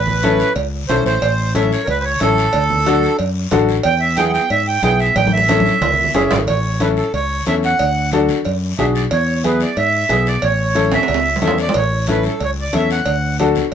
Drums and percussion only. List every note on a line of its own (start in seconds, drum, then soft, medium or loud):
0.07 low conga medium
0.23 cowbell medium
0.23 high conga medium
0.23 short guiro medium
0.39 short guiro medium
0.55 cowbell medium
0.55 high conga soft
0.55 long guiro medium
0.89 cowbell medium
0.89 high conga medium
0.89 low conga medium
0.89 short guiro medium
1.06 short guiro medium
1.22 cowbell loud
1.22 high conga soft
1.22 long guiro medium
1.55 cowbell medium
1.55 high conga medium
1.55 short guiro medium
1.72 short guiro medium
1.87 cowbell medium
1.87 high conga soft
1.87 long guiro medium
2.20 cowbell medium
2.20 high conga medium
2.20 short guiro medium
2.38 short guiro medium
2.53 cowbell loud
2.53 high conga soft
2.53 long guiro medium
2.70 low conga medium
2.86 cowbell medium
2.86 high conga medium
2.86 short guiro medium
3.03 short guiro medium
3.19 cowbell medium
3.19 high conga soft
3.19 long guiro medium
3.51 cowbell medium
3.51 high conga medium
3.51 low conga medium
3.51 low timbale medium
3.51 short guiro medium
3.69 short guiro medium
3.83 cowbell loud
3.83 high conga soft
3.83 long guiro medium
4.17 cowbell medium
4.17 high conga medium
4.17 short guiro medium
4.34 short guiro medium
4.50 cowbell medium
4.50 high conga soft
4.50 long guiro medium
4.83 cowbell medium
4.83 high conga medium
4.83 short guiro medium
5.00 short guiro medium
5.16 cowbell loud
5.16 high conga loud
5.16 long guiro medium
5.27 high conga loud
5.37 high conga medium
5.49 cowbell medium
5.49 high conga medium
5.49 high timbale medium
5.49 short guiro medium
5.60 high conga loud
5.66 short guiro medium
5.82 cowbell medium
5.82 low conga medium
5.82 low timbale medium
5.82 long guiro medium
5.94 low conga medium
6.04 low conga medium
6.14 cowbell medium
6.14 low timbale medium
6.14 short guiro medium
6.31 low timbale loud
6.31 short guiro medium
6.36 low conga medium
6.47 cowbell medium
6.47 high conga soft
6.47 long guiro medium
6.80 cowbell medium
6.80 high conga medium
6.80 short guiro medium
6.97 short guiro medium
7.14 cowbell medium
7.14 high conga soft
7.14 long guiro medium
7.46 cowbell medium
7.46 high conga medium
7.46 short guiro medium
7.63 short guiro medium
7.79 cowbell loud
7.79 high conga soft
7.79 long guiro medium
8.12 cowbell medium
8.12 high conga medium
8.12 short guiro medium
8.29 low conga medium
8.29 short guiro medium
8.45 cowbell medium
8.45 high conga soft
8.45 long guiro medium
8.78 cowbell medium
8.78 high conga medium
8.78 low conga medium
8.78 short guiro medium
8.95 short guiro medium
9.11 cowbell loud
9.11 high conga soft
9.11 long guiro medium
9.44 cowbell medium
9.44 high conga medium
9.44 short guiro medium
9.60 short guiro medium
9.77 cowbell medium
9.77 high conga soft
9.77 long guiro medium
10.09 cowbell medium
10.09 high conga medium
10.09 low timbale medium
10.09 short guiro medium
10.27 short guiro medium
10.42 cowbell loud
10.42 high conga soft
10.42 long guiro medium
10.76 cowbell medium
10.76 high conga medium
10.76 short guiro medium
10.92 low conga medium
10.92 high timbale loud
10.92 short guiro medium
11.03 high timbale loud
11.08 cowbell medium
11.08 high conga soft
11.08 long guiro medium
11.14 high timbale medium
11.36 low timbale medium
11.42 cowbell medium
11.42 high conga medium
11.42 low conga medium
11.42 short guiro medium
11.48 low timbale loud
11.58 short guiro medium
11.69 low timbale medium
11.74 cowbell loud
11.74 high conga soft
11.74 long guiro medium
12.07 cowbell medium
12.07 high conga medium
12.07 short guiro medium
12.23 short guiro medium
12.40 cowbell medium
12.40 high conga soft
12.40 long guiro medium
12.73 cowbell medium
12.73 high conga medium
12.73 short guiro medium
12.90 short guiro medium
13.06 cowbell loud
13.06 high conga soft
13.06 long guiro medium
13.39 cowbell medium
13.39 high conga medium
13.39 short guiro medium
13.55 low conga medium
13.55 short guiro medium